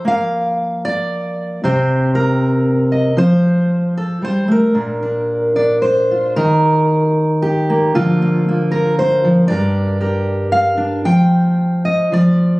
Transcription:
0, 0, Header, 1, 2, 480
1, 0, Start_track
1, 0, Key_signature, -2, "major"
1, 0, Tempo, 521286
1, 48, Time_signature, 3, 2, 24, 8
1, 3407, Tempo, 532387
1, 6767, Tempo, 514580
1, 9647, Tempo, 535714
1, 11515, End_track
2, 0, Start_track
2, 0, Title_t, "Steel-string acoustic guitar"
2, 0, Program_c, 0, 25
2, 0, Note_on_c, 0, 53, 57
2, 44, Note_on_c, 0, 58, 56
2, 70, Note_on_c, 0, 77, 81
2, 782, Note_on_c, 0, 74, 78
2, 1275, Note_off_c, 0, 77, 0
2, 1473, Note_off_c, 0, 58, 0
2, 1503, Note_off_c, 0, 53, 0
2, 1504, Note_off_c, 0, 74, 0
2, 1507, Note_on_c, 0, 48, 58
2, 1511, Note_on_c, 0, 60, 40
2, 1517, Note_on_c, 0, 72, 72
2, 1521, Note_on_c, 0, 67, 38
2, 1976, Note_off_c, 0, 72, 0
2, 1980, Note_on_c, 0, 70, 64
2, 2687, Note_on_c, 0, 75, 38
2, 2898, Note_off_c, 0, 75, 0
2, 2903, Note_off_c, 0, 60, 0
2, 2908, Note_off_c, 0, 67, 0
2, 2916, Note_on_c, 0, 53, 62
2, 2927, Note_off_c, 0, 70, 0
2, 2929, Note_off_c, 0, 48, 0
2, 2930, Note_on_c, 0, 72, 85
2, 3646, Note_off_c, 0, 72, 0
2, 3655, Note_on_c, 0, 69, 68
2, 3873, Note_off_c, 0, 53, 0
2, 3877, Note_on_c, 0, 55, 49
2, 3888, Note_off_c, 0, 69, 0
2, 3899, Note_on_c, 0, 72, 81
2, 4107, Note_off_c, 0, 55, 0
2, 4110, Note_on_c, 0, 57, 48
2, 4130, Note_off_c, 0, 72, 0
2, 4142, Note_on_c, 0, 70, 67
2, 4349, Note_on_c, 0, 46, 60
2, 4352, Note_on_c, 0, 62, 38
2, 4355, Note_off_c, 0, 57, 0
2, 4591, Note_off_c, 0, 62, 0
2, 4602, Note_on_c, 0, 62, 36
2, 5079, Note_off_c, 0, 62, 0
2, 5083, Note_on_c, 0, 74, 65
2, 5089, Note_on_c, 0, 62, 37
2, 5314, Note_off_c, 0, 74, 0
2, 5317, Note_on_c, 0, 72, 68
2, 5579, Note_off_c, 0, 70, 0
2, 5583, Note_on_c, 0, 65, 34
2, 5782, Note_off_c, 0, 46, 0
2, 5791, Note_off_c, 0, 62, 0
2, 5791, Note_off_c, 0, 65, 0
2, 5805, Note_off_c, 0, 72, 0
2, 5808, Note_on_c, 0, 70, 81
2, 5814, Note_on_c, 0, 51, 63
2, 6761, Note_off_c, 0, 70, 0
2, 6765, Note_on_c, 0, 67, 79
2, 7019, Note_on_c, 0, 58, 54
2, 7220, Note_off_c, 0, 51, 0
2, 7248, Note_off_c, 0, 67, 0
2, 7255, Note_on_c, 0, 65, 83
2, 7261, Note_on_c, 0, 50, 67
2, 7273, Note_off_c, 0, 58, 0
2, 7277, Note_on_c, 0, 53, 44
2, 7279, Note_on_c, 0, 58, 43
2, 7506, Note_off_c, 0, 58, 0
2, 7509, Note_on_c, 0, 58, 42
2, 7750, Note_off_c, 0, 58, 0
2, 7754, Note_on_c, 0, 58, 44
2, 7968, Note_on_c, 0, 70, 82
2, 8206, Note_off_c, 0, 70, 0
2, 8223, Note_on_c, 0, 72, 87
2, 8446, Note_off_c, 0, 65, 0
2, 8453, Note_off_c, 0, 53, 0
2, 8464, Note_on_c, 0, 53, 60
2, 8658, Note_off_c, 0, 50, 0
2, 8677, Note_off_c, 0, 72, 0
2, 8681, Note_on_c, 0, 74, 104
2, 8691, Note_off_c, 0, 53, 0
2, 8696, Note_on_c, 0, 43, 69
2, 8699, Note_off_c, 0, 58, 0
2, 8701, Note_on_c, 0, 62, 50
2, 8702, Note_on_c, 0, 67, 51
2, 8717, Note_on_c, 0, 70, 53
2, 9161, Note_off_c, 0, 67, 0
2, 9167, Note_off_c, 0, 70, 0
2, 9172, Note_on_c, 0, 67, 44
2, 9179, Note_on_c, 0, 70, 47
2, 9649, Note_off_c, 0, 74, 0
2, 9652, Note_on_c, 0, 77, 95
2, 9869, Note_off_c, 0, 62, 0
2, 9879, Note_on_c, 0, 62, 57
2, 10093, Note_off_c, 0, 62, 0
2, 10100, Note_off_c, 0, 67, 0
2, 10104, Note_off_c, 0, 70, 0
2, 10125, Note_off_c, 0, 77, 0
2, 10129, Note_on_c, 0, 79, 102
2, 10132, Note_off_c, 0, 43, 0
2, 10133, Note_on_c, 0, 53, 64
2, 10840, Note_off_c, 0, 79, 0
2, 10844, Note_on_c, 0, 75, 77
2, 11075, Note_off_c, 0, 53, 0
2, 11086, Note_off_c, 0, 75, 0
2, 11086, Note_on_c, 0, 53, 65
2, 11099, Note_on_c, 0, 74, 85
2, 11515, Note_off_c, 0, 53, 0
2, 11515, Note_off_c, 0, 74, 0
2, 11515, End_track
0, 0, End_of_file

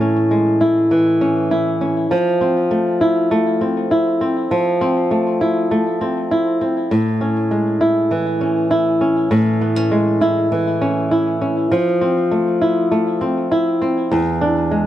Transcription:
0, 0, Header, 1, 2, 480
1, 0, Start_track
1, 0, Tempo, 600000
1, 1689, Time_signature, 4, 2, 24, 8
1, 11893, End_track
2, 0, Start_track
2, 0, Title_t, "Nylon-string guitar"
2, 0, Program_c, 0, 24
2, 0, Note_on_c, 0, 45, 85
2, 0, Note_on_c, 0, 52, 68
2, 0, Note_on_c, 0, 56, 66
2, 0, Note_on_c, 0, 64, 71
2, 7, Note_on_c, 0, 61, 66
2, 238, Note_off_c, 0, 56, 0
2, 248, Note_on_c, 0, 56, 64
2, 484, Note_off_c, 0, 64, 0
2, 487, Note_on_c, 0, 64, 66
2, 726, Note_off_c, 0, 52, 0
2, 729, Note_on_c, 0, 52, 70
2, 960, Note_off_c, 0, 61, 0
2, 970, Note_on_c, 0, 61, 66
2, 1206, Note_off_c, 0, 64, 0
2, 1210, Note_on_c, 0, 64, 78
2, 1440, Note_off_c, 0, 61, 0
2, 1449, Note_on_c, 0, 61, 61
2, 1685, Note_off_c, 0, 52, 0
2, 1688, Note_off_c, 0, 45, 0
2, 1688, Note_on_c, 0, 53, 84
2, 1736, Note_off_c, 0, 56, 0
2, 1737, Note_off_c, 0, 61, 0
2, 1928, Note_on_c, 0, 60, 64
2, 2167, Note_on_c, 0, 57, 65
2, 2405, Note_off_c, 0, 64, 0
2, 2408, Note_on_c, 0, 64, 68
2, 2646, Note_off_c, 0, 57, 0
2, 2650, Note_on_c, 0, 57, 79
2, 2879, Note_off_c, 0, 60, 0
2, 2889, Note_on_c, 0, 60, 66
2, 3126, Note_off_c, 0, 64, 0
2, 3130, Note_on_c, 0, 64, 68
2, 3360, Note_off_c, 0, 60, 0
2, 3369, Note_on_c, 0, 60, 65
2, 3600, Note_off_c, 0, 53, 0
2, 3609, Note_on_c, 0, 53, 84
2, 3840, Note_off_c, 0, 60, 0
2, 3850, Note_on_c, 0, 60, 67
2, 4084, Note_off_c, 0, 57, 0
2, 4088, Note_on_c, 0, 57, 64
2, 4325, Note_off_c, 0, 64, 0
2, 4328, Note_on_c, 0, 64, 64
2, 4567, Note_off_c, 0, 57, 0
2, 4570, Note_on_c, 0, 57, 73
2, 4800, Note_off_c, 0, 60, 0
2, 4809, Note_on_c, 0, 60, 66
2, 5048, Note_off_c, 0, 64, 0
2, 5051, Note_on_c, 0, 64, 73
2, 5280, Note_off_c, 0, 60, 0
2, 5290, Note_on_c, 0, 60, 64
2, 5529, Note_off_c, 0, 53, 0
2, 5530, Note_on_c, 0, 45, 90
2, 5577, Note_off_c, 0, 60, 0
2, 5768, Note_on_c, 0, 61, 62
2, 6006, Note_off_c, 0, 57, 0
2, 6009, Note_on_c, 0, 56, 63
2, 6243, Note_off_c, 0, 64, 0
2, 6247, Note_on_c, 0, 64, 67
2, 6488, Note_on_c, 0, 52, 68
2, 6718, Note_off_c, 0, 61, 0
2, 6727, Note_on_c, 0, 61, 63
2, 6963, Note_off_c, 0, 64, 0
2, 6966, Note_on_c, 0, 64, 72
2, 7199, Note_off_c, 0, 61, 0
2, 7208, Note_on_c, 0, 61, 61
2, 7438, Note_off_c, 0, 45, 0
2, 7447, Note_on_c, 0, 45, 92
2, 7687, Note_off_c, 0, 61, 0
2, 7690, Note_on_c, 0, 59, 66
2, 7809, Note_off_c, 0, 59, 0
2, 7809, Note_on_c, 0, 61, 55
2, 7922, Note_off_c, 0, 56, 0
2, 7931, Note_on_c, 0, 56, 71
2, 8168, Note_off_c, 0, 64, 0
2, 8171, Note_on_c, 0, 64, 69
2, 8411, Note_off_c, 0, 52, 0
2, 8414, Note_on_c, 0, 52, 72
2, 8643, Note_off_c, 0, 61, 0
2, 8652, Note_on_c, 0, 61, 73
2, 8888, Note_off_c, 0, 64, 0
2, 8891, Note_on_c, 0, 64, 72
2, 9122, Note_off_c, 0, 61, 0
2, 9132, Note_on_c, 0, 61, 65
2, 9368, Note_off_c, 0, 45, 0
2, 9369, Note_off_c, 0, 52, 0
2, 9372, Note_on_c, 0, 53, 85
2, 9418, Note_off_c, 0, 56, 0
2, 9418, Note_off_c, 0, 61, 0
2, 9611, Note_on_c, 0, 60, 64
2, 9852, Note_on_c, 0, 57, 67
2, 10089, Note_off_c, 0, 64, 0
2, 10092, Note_on_c, 0, 64, 66
2, 10322, Note_off_c, 0, 57, 0
2, 10332, Note_on_c, 0, 57, 73
2, 10559, Note_off_c, 0, 60, 0
2, 10569, Note_on_c, 0, 60, 67
2, 10809, Note_off_c, 0, 64, 0
2, 10812, Note_on_c, 0, 64, 74
2, 11043, Note_off_c, 0, 60, 0
2, 11053, Note_on_c, 0, 60, 64
2, 11290, Note_off_c, 0, 53, 0
2, 11292, Note_on_c, 0, 40, 91
2, 11338, Note_off_c, 0, 57, 0
2, 11339, Note_off_c, 0, 60, 0
2, 11531, Note_on_c, 0, 62, 70
2, 11555, Note_off_c, 0, 64, 0
2, 11770, Note_on_c, 0, 56, 68
2, 11893, Note_off_c, 0, 40, 0
2, 11893, Note_off_c, 0, 56, 0
2, 11893, Note_off_c, 0, 62, 0
2, 11893, End_track
0, 0, End_of_file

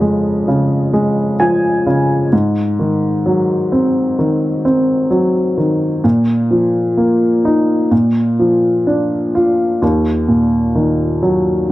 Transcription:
0, 0, Header, 1, 2, 480
1, 0, Start_track
1, 0, Tempo, 927357
1, 1203, Time_signature, 4, 2, 24, 8
1, 3127, Tempo, 943396
1, 6016, End_track
2, 0, Start_track
2, 0, Title_t, "Upright piano"
2, 0, Program_c, 0, 0
2, 0, Control_c, 0, 64, 127
2, 0, Note_on_c, 0, 41, 47
2, 0, Note_on_c, 0, 49, 36
2, 0, Note_on_c, 0, 53, 36
2, 5, Note_on_c, 0, 56, 36
2, 240, Note_off_c, 0, 49, 0
2, 248, Note_on_c, 0, 49, 40
2, 476, Note_off_c, 0, 56, 0
2, 483, Note_on_c, 0, 56, 45
2, 701, Note_off_c, 0, 53, 0
2, 723, Note_on_c, 0, 80, 51
2, 725, Note_on_c, 0, 53, 42
2, 957, Note_off_c, 0, 49, 0
2, 965, Note_on_c, 0, 49, 37
2, 1181, Note_off_c, 0, 41, 0
2, 1182, Note_off_c, 0, 56, 0
2, 1182, Note_off_c, 0, 80, 0
2, 1189, Note_off_c, 0, 53, 0
2, 1196, Note_off_c, 0, 49, 0
2, 1205, Note_on_c, 0, 44, 50
2, 1211, Control_c, 0, 64, 0
2, 1311, Control_c, 0, 64, 127
2, 1446, Note_on_c, 0, 51, 40
2, 1686, Note_on_c, 0, 54, 41
2, 1926, Note_on_c, 0, 60, 41
2, 2160, Note_off_c, 0, 51, 0
2, 2167, Note_on_c, 0, 51, 38
2, 2399, Note_off_c, 0, 60, 0
2, 2407, Note_on_c, 0, 60, 43
2, 2625, Note_off_c, 0, 54, 0
2, 2643, Note_on_c, 0, 54, 40
2, 2878, Note_off_c, 0, 51, 0
2, 2885, Note_on_c, 0, 51, 34
2, 3107, Note_off_c, 0, 44, 0
2, 3108, Note_off_c, 0, 60, 0
2, 3112, Note_off_c, 0, 54, 0
2, 3119, Note_off_c, 0, 51, 0
2, 3126, Note_on_c, 0, 46, 49
2, 3134, Control_c, 0, 64, 0
2, 3218, Control_c, 0, 64, 127
2, 3364, Note_on_c, 0, 53, 35
2, 3601, Note_on_c, 0, 58, 36
2, 3844, Note_on_c, 0, 63, 38
2, 4061, Note_off_c, 0, 46, 0
2, 4062, Note_off_c, 0, 53, 0
2, 4067, Note_off_c, 0, 58, 0
2, 4076, Note_off_c, 0, 63, 0
2, 4079, Note_on_c, 0, 46, 44
2, 4089, Control_c, 0, 64, 0
2, 4168, Control_c, 0, 64, 127
2, 4324, Note_on_c, 0, 53, 39
2, 4566, Note_on_c, 0, 62, 36
2, 4810, Note_on_c, 0, 65, 38
2, 5028, Note_off_c, 0, 46, 0
2, 5030, Note_off_c, 0, 53, 0
2, 5035, Note_off_c, 0, 62, 0
2, 5043, Note_off_c, 0, 65, 0
2, 5050, Note_on_c, 0, 39, 47
2, 5055, Control_c, 0, 64, 0
2, 5156, Control_c, 0, 64, 127
2, 5284, Note_on_c, 0, 46, 35
2, 5525, Note_on_c, 0, 51, 36
2, 5765, Note_on_c, 0, 54, 36
2, 5997, Note_off_c, 0, 46, 0
2, 6016, Note_off_c, 0, 39, 0
2, 6016, Note_off_c, 0, 51, 0
2, 6016, Note_off_c, 0, 54, 0
2, 6016, End_track
0, 0, End_of_file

